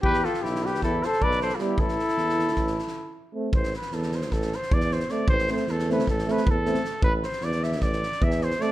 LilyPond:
<<
  \new Staff \with { instrumentName = "Trumpet" } { \time 9/8 \key a \minor \tempo 4. = 103 b'8 a'8 g'8 b'8 a'8 c''8 d''8 c''16. a'32 g'8 | a'2.~ a'8 r4 | c''8 b'8 a'8 c''8 a'8 c''8 d''8 c''8 d''8 | c''8 c''8 a'8 b'8 a'8 b'8 a'4. |
b'8 c''8 d''8 e''8 d''4 e''8 c''8 d''8 | }
  \new Staff \with { instrumentName = "Flugelhorn" } { \time 9/8 \key a \minor g'8 f'8 e'8 g'8 e'8 a'8 b'8 a'16. f'32 e'8 | e'2.~ e'8 r4 | r1 r8 | r1 r8 |
r1 r8 | }
  \new Staff \with { instrumentName = "Euphonium" } { \time 9/8 \key a \minor r1 b8~ | b8 r2. r8 c'8~ | c'8 r2. r8 c'8~ | c'8 c'4 c'4 c'4 c'4 |
r1 c'8 | }
  \new Staff \with { instrumentName = "Trombone" } { \time 9/8 \key a \minor r1 g8~ | g8 r2. r8 a8~ | a8 r2. r8 a8~ | a8 a4 a4 a4 a4 |
r1 a8 | }
  \new Staff \with { instrumentName = "Tuba" } { \clef bass \time 9/8 \key a \minor e,4 b,,4 e,4 b,,4. | a,,4 e,4 a,,4 r4. | a,,4 e,4 a,,4 e,4. | a,,4 e,4 a,,4 e,4. |
a,,4 e,4 a,,4 e,4. | }
  \new DrumStaff \with { instrumentName = "Drums" } \drummode { \time 9/8 bd16 sn16 sn16 sn16 sn16 sn16 sn16 sn16 <bd sn>8 sn16 sn16 bd16 sn16 sn16 sn16 sn8 | bd16 sn16 sn16 sn16 sn16 sn16 sn16 sn16 <bd sn>16 sn16 sn16 sn16 r4. | bd16 sn16 sn16 sn16 sn16 sn16 sn16 sn16 <bd sn>16 sn16 sn16 sn16 bd16 sn16 sn16 sn16 sn8 | bd16 sn16 sn16 sn16 sn16 sn16 sn16 sn16 <bd sn>16 sn16 sn16 sn16 bd8 sn16 sn16 sn8 |
bd8 sn16 sn16 sn16 sn16 sn16 sn16 <bd sn>16 sn16 sn16 sn16 bd16 sn16 sn16 sn16 sn8 | }
>>